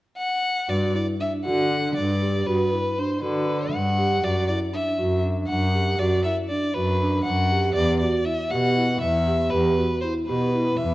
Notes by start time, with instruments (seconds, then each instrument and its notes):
0.18 violin F#5
0.69 cello G2, vibraphone F#4, violin D5
0.94 vibraphone E4, violin D5
1.20 vibraphone D4, violin E5
1.45 cello D3, vibraphone F#4, violin F#5
1.71 vibraphone D4
1.96 cello G2, violin D5
2.22 vibraphone G4
2.46 cello G2, vibraphone F#4, violin B4
2.72 vibraphone E4
2.98 vibraphone D4, violin C5
3.22 cello D3, vibraphone F#4, violin B4
3.47 vibraphone D4
3.73 cello G2, violin F#5
3.98 vibraphone G4
4.23 cello F#2, vibraphone F#4, violin D5
4.47 vibraphone E4, violin D5
4.73 vibraphone D4, violin E5
4.99 cello F#2, vibraphone F#4
5.24 vibraphone D4
5.48 cello F#2, violin F#5
5.75 vibraphone G4
5.98 cello F#2, vibraphone F#4, violin D5
6.24 vibraphone E4, violin E5
6.49 vibraphone D4, violin D5
6.74 cello F#2, vibraphone F#4, violin B4
7.01 vibraphone D4
7.23 cello F#2, violin F#5
7.51 vibraphone G4
7.75 cello E2, vibraphone G4, violin D5
8.00 vibraphone F#4, violin D5
8.25 vibraphone E4, violin E5
8.51 cello B2, vibraphone G4, violin F#5
8.77 vibraphone E4
9.01 cello E2, violin E5
9.27 vibraphone G4
9.50 cello E2, vibraphone G4, violin B4
9.77 vibraphone F#4
10.01 vibraphone E4, violin C5
10.27 cello B2, vibraphone G4, violin B4
10.55 vibraphone E4
10.76 cello E2, violin E5